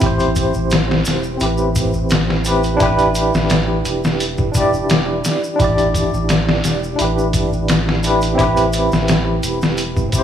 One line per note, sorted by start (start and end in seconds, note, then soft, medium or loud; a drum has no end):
0.00 0.51 A1 medium
0.00 1.38 C4 medium
0.00 1.41 E4 medium
0.00 0.03 G4 medium
0.00 1.38 G4 medium
0.00 0.06 C5 medium
0.00 kick loud
0.00 closed hi-hat medium
0.00 maracas soft
0.06 1.40 C5 medium
0.19 closed hi-hat soft
0.19 maracas soft
0.35 kick medium
0.35 closed hi-hat medium
0.35 maracas medium
0.54 1.03 A1 medium
0.54 maracas soft
0.70 snare loud
0.70 closed hi-hat medium
0.70 maracas medium
0.91 snare medium
1.05 1.37 E1 medium
1.05 snare soft
1.05 closed hi-hat medium
1.05 maracas medium
1.23 maracas soft
1.38 2.77 A1 medium
1.38 2.40 C4 medium
1.38 2.42 E4 medium
1.38 closed hi-hat medium
1.38 maracas soft
1.43 2.43 G4 medium
1.43 2.44 B4 medium
1.58 maracas soft
1.75 kick medium
1.75 closed hi-hat medium
1.75 maracas medium
1.93 maracas soft
2.09 snare loud
2.09 closed hi-hat medium
2.09 maracas medium
2.30 snare soft
2.45 2.76 C4 medium
2.45 2.77 E4 medium
2.45 2.77 G4 medium
2.45 2.78 B4 medium
2.45 closed hi-hat medium
2.45 maracas medium
2.63 closed hi-hat soft
2.63 maracas soft
2.77 3.30 A1 medium
2.77 4.49 D4 loud
2.77 4.51 E4 medium
2.77 kick loud
2.77 closed hi-hat medium
2.77 maracas soft
2.82 4.52 G4 medium
2.82 4.54 B4 loud
2.99 closed hi-hat soft
2.99 maracas soft
3.15 closed hi-hat medium
3.15 maracas medium
3.33 3.82 A1 medium
3.33 snare medium
3.33 maracas soft
3.50 snare loud
3.50 closed hi-hat medium
3.50 maracas medium
3.85 5.21 E1 medium
3.85 closed hi-hat medium
3.85 maracas medium
4.04 snare medium
4.04 maracas soft
4.20 closed hi-hat medium
4.20 maracas soft
4.37 kick medium
4.37 maracas soft
4.51 5.54 D4 medium
4.51 5.55 E4 medium
4.51 kick medium
4.51 closed hi-hat medium
4.51 maracas loud
4.57 5.57 G4 medium
4.57 5.58 D5 medium
4.73 maracas soft
4.89 snare loud
4.89 closed hi-hat medium
4.89 maracas soft
5.24 snare soft
5.24 closed hi-hat medium
5.24 maracas loud
5.44 maracas soft
5.56 6.09 A1 medium
5.56 6.93 D4 medium
5.56 6.95 E4 medium
5.56 kick loud
5.56 closed hi-hat medium
5.56 maracas soft
5.62 6.96 G4 medium
5.62 6.98 D5 medium
5.78 closed hi-hat soft
5.78 maracas soft
5.94 kick medium
5.94 closed hi-hat medium
5.94 maracas medium
6.13 6.61 A1 medium
6.13 maracas soft
6.29 snare loud
6.29 closed hi-hat medium
6.29 maracas soft
6.49 snare medium
6.64 6.95 E1 medium
6.64 snare soft
6.64 closed hi-hat medium
6.64 maracas medium
6.84 maracas soft
6.96 8.36 A1 medium
6.96 7.98 D4 medium
6.96 8.00 E4 medium
6.96 closed hi-hat medium
6.96 maracas medium
7.02 8.01 G4 medium
7.02 8.03 B4 medium
7.18 maracas soft
7.33 kick medium
7.33 closed hi-hat medium
7.33 maracas medium
7.53 maracas soft
7.68 snare loud
7.68 closed hi-hat medium
7.68 maracas soft
7.89 snare soft
8.03 8.34 D4 medium
8.03 8.35 E4 medium
8.03 8.36 G4 medium
8.03 closed hi-hat medium
8.03 maracas medium
8.07 8.37 B4 medium
8.21 closed hi-hat soft
8.21 maracas soft
8.35 8.89 A1 medium
8.35 10.07 C4 loud
8.35 10.09 E4 medium
8.35 kick loud
8.35 closed hi-hat medium
8.39 10.10 G4 medium
8.39 maracas soft
8.43 10.12 B4 loud
8.57 closed hi-hat soft
8.57 maracas soft
8.73 closed hi-hat medium
8.73 maracas medium
8.92 9.40 A1 medium
8.92 snare medium
8.92 maracas soft
9.08 snare loud
9.08 closed hi-hat medium
9.08 maracas soft
9.43 10.23 E1 medium
9.43 closed hi-hat medium
9.43 maracas medium
9.62 snare medium
9.62 maracas soft
9.77 closed hi-hat medium
9.77 maracas soft
9.97 kick medium
9.97 maracas soft
10.09 10.23 C4 medium
10.09 10.23 E4 medium
10.09 kick medium
10.09 closed hi-hat medium
10.13 10.23 G4 medium
10.13 maracas medium
10.19 10.23 C5 medium